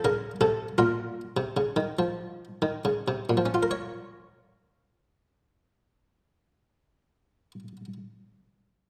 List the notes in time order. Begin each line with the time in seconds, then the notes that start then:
0.05 C#3 A#4
0.41 C3 A4
0.78 A#2 F4 A#4
1.37 C3
1.57 C#3
1.76 D#3
1.99 F3
2.62 D#3
2.85 C#3
3.08 C3
3.30 A#2
3.37 F3
3.46 C#4
3.54 F4
3.63 A#4
3.71 C#5